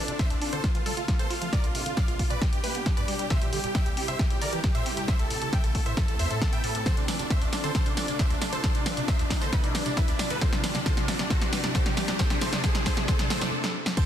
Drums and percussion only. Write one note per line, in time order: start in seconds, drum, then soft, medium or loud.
0.08 closed hi-hat medium
0.19 kick loud
0.19 snare soft
0.19 closed hi-hat medium
0.30 closed hi-hat medium
0.42 open hi-hat medium
0.53 closed hi-hat medium
0.64 kick loud
0.64 snare soft
0.64 closed hi-hat medium
0.75 closed hi-hat medium
0.86 open hi-hat loud
0.97 closed hi-hat medium
1.08 kick loud
1.08 snare soft
1.08 closed hi-hat medium
1.19 closed hi-hat medium
1.31 open hi-hat medium
1.42 closed hi-hat medium
1.53 kick loud
1.53 snare soft
1.53 closed hi-hat medium
1.64 closed hi-hat medium
1.75 open hi-hat loud
1.86 closed hi-hat medium
1.97 kick loud
1.97 snare medium
1.97 closed hi-hat medium
2.08 closed hi-hat medium
2.19 kick medium
2.19 open hi-hat medium
2.30 closed hi-hat medium
2.42 kick loud
2.42 snare medium
2.42 closed hi-hat medium
2.53 closed hi-hat medium
2.64 open hi-hat loud
2.75 closed hi-hat medium
2.86 kick loud
2.86 snare medium
2.86 closed hi-hat medium
2.97 closed hi-hat medium
3.08 open hi-hat medium
3.19 closed hi-hat medium
3.30 kick loud
3.30 snare medium
3.30 closed hi-hat medium
3.42 closed hi-hat medium
3.53 open hi-hat loud
3.64 closed hi-hat medium
3.75 kick loud
3.75 snare medium
3.75 closed hi-hat medium
3.86 closed hi-hat medium
3.97 open hi-hat medium
4.08 closed hi-hat medium
4.19 kick loud
4.19 snare medium
4.19 closed hi-hat medium
4.30 closed hi-hat medium
4.42 open hi-hat loud
4.53 closed hi-hat medium
4.64 kick loud
4.64 snare medium
4.64 closed hi-hat medium
4.75 closed hi-hat medium
4.86 open hi-hat loud
4.97 closed hi-hat medium
5.08 kick loud
5.08 snare medium
5.08 closed hi-hat medium
5.19 closed hi-hat medium
5.31 open hi-hat loud
5.42 closed hi-hat medium
5.53 kick loud
5.53 snare medium
5.53 closed hi-hat medium
5.64 closed hi-hat medium
5.75 kick medium
5.75 open hi-hat medium
5.86 closed hi-hat medium
5.97 kick loud
5.97 snare medium
5.97 closed hi-hat medium
6.08 closed hi-hat medium
6.19 open hi-hat loud
6.30 closed hi-hat medium
6.42 kick loud
6.42 snare medium
6.42 closed hi-hat medium
6.53 closed hi-hat medium
6.64 open hi-hat medium
6.75 closed hi-hat medium
6.86 kick loud
6.86 snare medium
6.86 closed hi-hat medium
6.86 tambourine soft
6.97 closed hi-hat medium
6.97 tambourine soft
7.08 snare medium
7.08 open hi-hat loud
7.08 tambourine medium
7.19 closed hi-hat medium
7.19 tambourine soft
7.30 kick loud
7.30 snare medium
7.30 closed hi-hat medium
7.30 tambourine soft
7.42 closed hi-hat medium
7.42 tambourine soft
7.53 snare medium
7.53 open hi-hat medium
7.53 tambourine medium
7.64 closed hi-hat medium
7.64 tambourine soft
7.75 kick loud
7.75 snare medium
7.75 closed hi-hat medium
7.75 tambourine soft
7.86 closed hi-hat medium
7.86 tambourine soft
7.97 snare medium
7.97 open hi-hat loud
7.97 tambourine medium
8.08 closed hi-hat medium
8.08 tambourine soft
8.19 kick loud
8.19 snare medium
8.19 closed hi-hat medium
8.19 tambourine soft
8.30 closed hi-hat medium
8.30 tambourine soft
8.42 snare medium
8.42 open hi-hat medium
8.42 tambourine medium
8.53 closed hi-hat medium
8.53 tambourine soft
8.64 kick loud
8.64 snare medium
8.64 closed hi-hat medium
8.64 tambourine soft
8.75 closed hi-hat medium
8.75 tambourine soft
8.86 snare medium
8.86 open hi-hat loud
8.86 tambourine medium
8.97 closed hi-hat medium
8.97 tambourine soft
9.08 kick loud
9.08 snare medium
9.08 closed hi-hat medium
9.08 tambourine soft
9.19 closed hi-hat medium
9.19 tambourine soft
9.30 kick medium
9.30 snare medium
9.30 open hi-hat medium
9.30 tambourine medium
9.42 closed hi-hat medium
9.42 tambourine soft
9.53 kick loud
9.53 snare medium
9.53 closed hi-hat medium
9.53 tambourine soft
9.64 closed hi-hat medium
9.64 tambourine soft
9.75 snare medium
9.75 open hi-hat loud
9.75 tambourine medium
9.86 closed hi-hat medium
9.86 tambourine soft
9.97 kick loud
9.97 snare medium
9.97 closed hi-hat medium
9.97 tambourine soft
10.08 closed hi-hat medium
10.08 tambourine soft
10.19 snare loud
10.19 open hi-hat medium
10.19 tambourine medium
10.30 closed hi-hat medium
10.30 tambourine soft
10.41 kick loud
10.41 snare medium
10.41 closed hi-hat medium
10.41 tambourine soft
10.53 snare medium
10.53 closed hi-hat medium
10.53 tambourine soft
10.64 snare medium
10.64 open hi-hat loud
10.64 tambourine medium
10.75 snare medium
10.75 closed hi-hat medium
10.75 tambourine soft
10.86 kick loud
10.86 snare loud
10.86 closed hi-hat medium
10.86 tambourine soft
10.97 snare medium
10.97 closed hi-hat medium
10.97 tambourine soft
11.08 snare medium
11.08 open hi-hat medium
11.08 tambourine medium
11.19 snare medium
11.19 closed hi-hat medium
11.19 tambourine soft
11.30 kick loud
11.30 snare medium
11.30 closed hi-hat medium
11.30 tambourine soft
11.41 snare medium
11.41 closed hi-hat medium
11.41 tambourine soft
11.53 snare loud
11.53 open hi-hat loud
11.53 tambourine medium
11.64 snare medium
11.64 closed hi-hat medium
11.64 tambourine soft
11.75 kick loud
11.75 snare loud
11.75 closed hi-hat medium
11.75 tambourine soft
11.86 snare medium
11.86 closed hi-hat medium
11.86 tambourine soft
11.97 snare loud
11.97 open hi-hat medium
11.97 tambourine medium
12.08 snare medium
12.08 closed hi-hat medium
12.08 tambourine soft
12.19 kick loud
12.19 snare loud
12.19 closed hi-hat medium
12.19 tambourine soft
12.30 snare medium
12.30 closed hi-hat medium
12.30 tambourine soft
12.41 snare loud
12.41 open hi-hat loud
12.41 tambourine medium
12.53 snare loud
12.53 closed hi-hat medium
12.53 tambourine soft
12.64 kick loud
12.64 snare loud
12.64 closed hi-hat medium
12.64 tambourine soft
12.75 snare medium
12.75 closed hi-hat medium
12.75 tambourine soft
12.86 kick medium
12.86 snare loud
12.86 open hi-hat medium
12.86 tambourine medium
12.97 snare medium
12.97 closed hi-hat medium
12.97 tambourine soft
13.08 kick loud
13.08 snare loud
13.08 closed hi-hat medium
13.08 tambourine soft
13.19 snare medium
13.19 closed hi-hat medium
13.19 tambourine soft
13.30 snare loud
13.30 open hi-hat loud
13.30 tambourine medium
13.41 snare loud
13.41 closed hi-hat medium
13.41 tambourine soft
13.64 snare medium
13.86 snare loud
13.97 kick loud
13.97 closed hi-hat medium
13.97 tambourine soft
13.97 crash loud